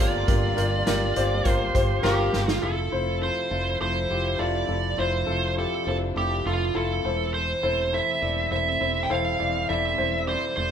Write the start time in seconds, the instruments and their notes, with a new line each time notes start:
Already playing: string section D3 G3 A#3 F4, grand piano A#4
0.00 fingered electric bass G1, grand piano F4 G4 A4, lead electric guitar D5
0.27 fingered electric bass G1, grand piano G2 F4 G4 A#4, kick, closed hi-hat
0.57 fingered electric bass G1, grand piano F4 G4 A#4, closed hi-hat
0.86 fingered electric bass G1, grand piano F4 G4 A#4, snare, closed hi-hat
1.16 fingered electric bass G1, grand piano F4 G4 C5, closed hi-hat
1.45 fingered electric bass G1, grand piano F4 G4 A#4, lead electric guitar C5, kick, closed hi-hat
1.74 fingered electric bass G1, grand piano F4 G4 C5, kick, closed hi-hat
2.03 fingered electric bass G1, grand piano F4 G4 A#4, lead electric guitar G4, snare
2.32 fingered electric bass G1, grand piano F4 G4 A#4, snare
2.48 lead electric guitar F4, snare
2.62 fingered electric bass F1, string section C3 F3 A3 E4, grand piano E4 F4 A4, lead electric guitar A4
2.92 fingered electric bass F1, grand piano E4 F4 C5
3.22 grand piano E4 F4 A4, lead electric guitar C5
3.51 fingered electric bass F1, grand piano E4 F4 A4
3.80 fingered electric bass F1, grand piano E4 F4 A4, lead electric guitar C5
4.10 fingered electric bass F1, grand piano E4 F4 G4
4.39 fingered electric bass F1, grand piano E4 F4 A4, lead electric guitar D5
4.69 fingered electric bass F1, grand piano E4 F4 A4
4.98 fingered electric bass F1, string section D4, grand piano E4 F4 C5, lead electric guitar C5
5.26 fingered electric bass F1, grand piano E4 F4 A4
5.57 grand piano E4 F4 G4, lead electric guitar A4
5.87 fingered electric bass F1, grand piano E4 F4 C5, lead electric guitar A4
6.16 fingered electric bass F1, grand piano E4 F4 A4, lead electric guitar G4
6.46 fingered electric bass F1, grand piano E4 F4 A4, lead electric guitar F4
6.74 fingered electric bass F1, grand piano E4 F4 A4, lead electric guitar A4
7.04 fingered electric bass E1, string section C3 E3 C4, grand piano E3 E4 A4 C5
7.34 lead electric guitar C5
7.63 fingered electric bass E1, grand piano E4 A4 C5
7.93 grand piano E4 A4 C5, lead electric guitar E5
8.22 fingered electric bass E1, grand piano E4 A4 D5
8.51 fingered electric bass E1, grand piano E4 A4 C5, lead electric guitar E5
8.81 fingered electric bass E1, grand piano E4 A4 C5
9.03 lead electric guitar G5
9.10 fingered electric bass E1, grand piano E4 A4 C5, lead electric guitar F5
9.39 fingered electric bass E1, grand piano E3 E4 A4 D5, string section G3
9.69 fingered electric bass E1, grand piano E4 A4 D5, lead electric guitar E5
9.98 fingered electric bass E1, grand piano E4 A4 C5
10.28 grand piano E4 A4 D5, lead electric guitar C5
10.57 fingered electric bass E1, grand piano E4 A4 D5, lead electric guitar C5